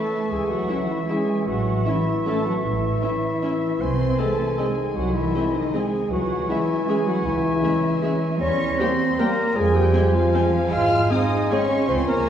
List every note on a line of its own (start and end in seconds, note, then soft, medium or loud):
0.00 1.44 E3 soft
0.00 0.31 A3 medium
0.00 0.32 A4 medium
0.00 1.44 E5 medium
0.00 0.31 A5 medium
0.00 1.44 C#6 soft
0.30 0.63 C#2 medium
0.30 0.49 G#3 medium
0.30 0.52 G#4 medium
0.30 0.50 G#5 medium
0.49 0.89 F#3 medium
0.49 0.89 F#4 medium
0.49 0.90 F#5 medium
0.68 0.83 E3 soft
0.68 0.83 C#4 soft
0.68 0.77 E4 soft
0.68 0.77 E5 soft
0.89 1.10 E3 medium
0.89 0.99 E4 medium
0.89 1.09 E5 medium
1.09 1.23 E3 soft
1.09 1.47 G#3 medium
1.09 1.23 C#4 soft
1.09 1.17 E4 soft
1.09 1.46 G#4 medium
1.09 1.17 E5 soft
1.09 1.47 G#5 medium
1.47 1.80 A1 medium
1.47 4.60 E3 medium
1.47 1.87 F#3 medium
1.47 1.85 F#4 medium
1.47 3.83 E5 soft
1.47 1.86 F#5 medium
1.47 3.76 C#6 medium
1.85 2.00 E3 soft
1.85 2.26 E3 medium
1.85 2.00 C#4 soft
1.85 1.95 C#4 soft
1.85 1.95 E4 soft
1.85 2.28 E4 medium
1.85 1.93 E5 soft
1.85 2.26 E5 medium
2.25 2.40 E3 soft
2.25 2.46 A3 medium
2.25 2.39 C#4 soft
2.25 2.35 C#4 soft
2.25 2.35 E4 soft
2.25 2.48 A4 medium
2.25 2.33 E5 soft
2.25 2.46 A5 medium
2.46 2.53 F#3 medium
2.46 2.66 F#4 medium
2.46 2.53 F#5 medium
2.64 2.96 A1 medium
2.64 3.78 E3 medium
2.64 3.82 E4 medium
2.64 3.78 E5 medium
3.02 3.17 E3 soft
3.02 3.10 C#4 soft
3.02 3.17 C#4 soft
3.02 3.10 E4 soft
3.02 3.11 E5 soft
3.42 3.57 E3 soft
3.42 3.50 C#4 soft
3.42 3.56 C#4 soft
3.42 3.51 E4 soft
3.42 3.50 E5 soft
3.80 4.12 C2 medium
3.80 4.19 C4 medium
3.80 4.20 C5 medium
3.80 5.86 G#5 medium
3.80 5.82 C6 medium
3.80 4.19 C6 medium
4.18 4.33 G#3 soft
4.18 4.59 A3 medium
4.18 4.27 C4 soft
4.18 4.33 C4 soft
4.18 4.27 G#4 soft
4.18 4.60 A4 medium
4.18 4.27 D#5 soft
4.18 4.59 A5 medium
4.58 5.86 D#3 soft
4.58 4.72 G#3 soft
4.58 4.96 G#3 medium
4.58 4.72 C4 soft
4.58 4.67 C4 soft
4.58 4.97 G#4 medium
4.58 4.67 G#4 medium
4.58 4.67 D#5 soft
4.58 4.96 G#5 soft
4.96 5.28 C2 medium
4.96 5.14 F#3 medium
4.96 5.16 F#4 medium
4.96 5.14 F#5 medium
5.14 5.55 E3 medium
5.14 5.56 E4 medium
5.14 5.54 E5 medium
5.34 5.48 G#3 soft
5.34 5.49 C4 soft
5.34 5.43 C4 soft
5.34 5.43 G#4 soft
5.34 5.44 D#5 soft
5.54 5.74 D#3 medium
5.54 5.73 D#4 medium
5.54 5.74 D#5 medium
5.73 5.87 G#3 soft
5.73 6.11 G#3 medium
5.73 5.87 C4 soft
5.73 5.82 C4 soft
5.73 6.11 G#4 medium
5.73 5.82 G#4 soft
5.73 5.83 D#5 soft
5.73 6.12 G#5 medium
6.10 6.43 C#2 medium
6.10 8.36 E3 medium
6.10 6.49 F#3 medium
6.10 6.50 F#4 medium
6.10 6.49 F#5 medium
6.10 8.37 G#5 medium
6.10 8.37 C#6 medium
6.49 6.88 E3 medium
6.49 6.63 G#3 medium
6.49 6.58 G#3 medium
6.49 6.63 C#4 medium
6.49 6.90 E4 medium
6.49 6.58 G#4 medium
6.49 6.58 E5 soft
6.49 6.89 E5 medium
6.87 7.01 G#3 soft
6.87 7.07 G#3 medium
6.87 6.97 G#3 medium
6.87 7.00 C#4 medium
6.87 7.08 G#4 medium
6.87 6.97 G#4 medium
6.87 6.97 E5 soft
6.87 7.08 G#5 medium
7.06 7.25 F#3 medium
7.06 7.27 F#4 medium
7.06 7.26 F#5 medium
7.25 7.57 C#2 medium
7.25 8.38 E3 medium
7.25 8.14 E4 medium
7.25 8.41 E5 medium
7.62 7.77 G#3 medium
7.62 7.71 G#3 medium
7.62 7.77 C#4 medium
7.62 7.72 G#4 medium
7.62 7.72 E5 medium
8.02 8.16 G#3 medium
8.02 8.11 G#3 medium
8.02 8.16 C#4 medium
8.02 8.11 G#4 medium
8.02 8.12 E5 soft
8.40 8.72 E2 medium
8.40 9.57 G3 medium
8.40 8.79 C#4 medium
8.40 8.80 C#5 medium
8.40 9.58 A#5 medium
8.40 10.48 C6 medium
8.40 8.78 C#6 medium
8.78 8.92 G3 medium
8.78 8.93 A#3 medium
8.78 8.87 A#3 medium
8.78 9.19 C4 medium
8.78 8.87 G4 medium
8.78 9.20 C5 medium
8.78 8.88 G5 medium
8.78 9.18 C6 medium
9.19 9.33 G3 medium
9.19 9.27 A#3 medium
9.19 9.33 A#3 medium
9.19 9.56 A#3 medium
9.19 9.27 G4 medium
9.19 9.58 A#4 medium
9.19 9.27 G5 medium
9.19 9.56 A#5 medium
9.55 9.87 F2 medium
9.55 10.70 F3 medium
9.55 9.63 G#3 medium
9.55 9.77 G#4 loud
9.55 11.88 G#5 medium
9.55 9.75 G#5 medium
9.74 10.13 G3 medium
9.74 10.16 G4 medium
9.74 10.15 G5 medium
9.94 10.09 G#3 medium
9.94 10.02 C4 medium
9.94 10.09 C4 medium
9.94 10.02 C5 medium
9.94 10.02 G#5 medium
10.15 10.72 F3 medium
10.15 10.72 F4 medium
10.15 10.71 F5 medium
10.34 10.48 G#3 medium
10.34 10.42 C4 medium
10.34 10.49 C4 medium
10.34 10.42 C5 medium
10.34 10.43 G#5 medium
10.70 11.03 G#1 medium
10.70 11.90 G#3 medium
10.70 11.09 F4 medium
10.70 11.12 F5 loud
10.70 11.90 C6 medium
10.70 11.10 F6 medium
11.10 11.25 G#3 medium
11.10 11.18 C4 medium
11.10 11.25 C4 medium
11.10 11.50 D#4 medium
11.10 11.18 G#4 medium
11.10 11.54 D#5 medium
11.10 11.18 G#5 medium
11.10 11.50 D#6 medium
11.50 11.65 G#3 medium
11.50 11.59 C4 medium
11.50 11.65 C4 medium
11.50 11.88 C#4 medium
11.50 11.59 G#4 medium
11.50 11.88 C#5 medium
11.50 11.59 G#5 medium
11.50 11.89 C#6 medium
11.88 12.21 C#2 medium
11.88 12.29 F3 medium
11.88 12.07 C4 medium
11.88 11.97 C5 medium
11.88 12.29 G#5 medium
11.88 12.08 C6 medium
11.88 12.29 C#6 medium
12.08 12.29 A#3 medium
12.08 12.29 A#4 medium
12.08 12.29 A#5 medium